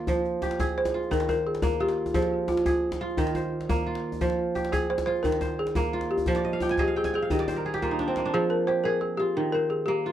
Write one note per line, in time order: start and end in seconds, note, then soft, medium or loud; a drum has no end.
0.00 0.12 D#3 medium
0.00 1.49 A#3 medium
0.00 0.94 F4 medium
0.00 0.40 C5 medium
0.07 1.16 F3 medium
0.07 djembe bass medium
0.25 djembe slap soft
0.42 1.84 G4 medium
0.42 djembe tone medium
0.51 djembe slap soft
0.60 1.96 G#4 medium
0.60 0.77 G#4 medium
0.60 djembe bass medium
0.78 1.09 C5 medium
0.85 djembe slap medium
0.85 djembe tone medium
0.94 1.80 F4 medium
1.03 djembe slap soft
1.11 2.19 D#3 medium
1.11 1.19 A#4 medium
1.11 djembe bass medium
1.20 djembe slap medium
1.29 1.46 A#4 medium
1.29 2.47 C5 medium
1.29 djembe tone medium
1.47 1.62 G#4 medium
1.55 djembe slap soft
1.62 3.56 A#3 medium
1.62 1.80 A#4 medium
1.62 djembe tone medium
1.62 djembe bass medium
1.80 3.00 F4 medium
1.80 2.16 G4 medium
1.89 djembe slap medium
2.06 djembe tone medium
2.14 3.22 F3 medium
2.14 2.50 G#4 medium
2.14 djembe bass medium
2.22 djembe slap medium
2.31 djembe slap soft
2.48 2.65 F4 medium
2.48 djembe tone medium
2.57 djembe slap medium
2.66 3.31 F4 medium
2.66 4.02 G#4 medium
2.66 djembe bass medium
2.92 djembe slap medium
2.92 djembe tone medium
3.01 3.86 F4 medium
3.10 djembe slap soft
3.17 4.26 D#3 medium
3.17 djembe bass medium
3.27 djembe slap soft
3.35 4.54 C5 medium
3.35 djembe tone medium
3.61 djembe slap soft
3.69 5.62 A#3 medium
3.69 djembe tone medium
3.69 djembe bass medium
3.86 5.07 F4 medium
3.95 djembe slap soft
4.12 djembe tone soft
4.21 5.29 F3 medium
4.21 djembe bass medium
4.30 djembe slap soft
4.39 djembe slap soft
4.55 5.96 G4 medium
4.55 djembe tone medium
4.65 djembe slap soft
4.72 4.90 G#4 medium
4.72 6.09 G#4 medium
4.72 djembe bass medium
4.90 5.05 C5 loud
4.98 djembe slap medium
4.98 djembe tone soft
5.06 5.93 F4 medium
5.06 5.22 C5 loud
5.16 djembe slap soft
5.23 6.32 D#3 medium
5.23 5.55 A#4 medium
5.23 djembe bass medium
5.32 djembe slap medium
5.41 6.60 C5 medium
5.41 djembe tone medium
5.59 6.07 G#4 medium
5.67 djembe slap soft
5.75 7.69 A#3 medium
5.75 djembe tone medium
5.75 djembe bass medium
5.93 7.45 F4 medium
6.01 djembe slap soft
6.11 6.58 G4 medium
6.18 djembe tone medium
6.26 7.35 F3 medium
6.26 djembe bass medium
6.35 6.85 D5 medium
6.35 djembe slap medium
6.44 6.79 D#5 medium
6.44 djembe slap soft
6.52 6.87 F5 medium
6.52 djembe slap soft
6.60 6.80 F4 medium
6.60 6.85 G5 medium
6.60 djembe tone medium
6.69 7.02 G#5 medium
6.69 djembe slap soft
6.77 6.88 G4 medium
6.77 7.20 G#4 medium
6.77 7.30 D#5 medium
6.77 djembe slap soft
6.77 djembe bass medium
6.88 7.22 F5 medium
6.96 7.13 G#4 medium
6.96 7.13 G5 medium
6.96 djembe slap soft
7.04 7.80 G#5 medium
7.04 djembe slap soft
7.04 djembe tone medium
7.13 7.32 G#4 medium
7.13 7.72 G5 medium
7.13 djembe slap soft
7.22 8.22 F5 medium
7.30 8.38 D#3 medium
7.30 7.96 G4 medium
7.30 8.05 D#5 medium
7.30 djembe bass medium
7.39 7.97 D5 medium
7.39 djembe slap medium
7.48 8.67 C5 medium
7.48 djembe tone medium
7.56 8.84 A#4 medium
7.65 8.74 G#4 medium
7.65 djembe slap soft
7.74 8.68 G4 medium
7.74 djembe slap soft
7.82 8.16 A#3 medium
7.82 9.19 F4 medium
7.82 djembe bass soft
7.91 8.31 D#4 medium
7.99 8.25 D4 medium
7.99 djembe slap soft
8.08 9.88 C4 medium
8.16 9.88 A#3 medium
8.16 djembe slap medium
8.25 9.43 D4 medium
8.34 9.41 F3 medium
8.34 8.51 G#4 loud
8.50 8.68 A#4 medium
8.67 10.09 G4 medium
8.67 8.85 C5 loud
8.84 10.12 G#4 medium
8.84 9.02 A#4 medium
9.01 9.19 G#4 medium
9.17 10.06 F4 medium
9.17 9.54 G4 loud
9.37 10.12 D#3 medium
9.52 9.71 A#4 loud
9.52 10.12 C5 medium
9.70 9.88 G#4 medium
9.86 10.12 A#3 medium
9.86 10.12 G4 medium
10.06 10.12 F4 medium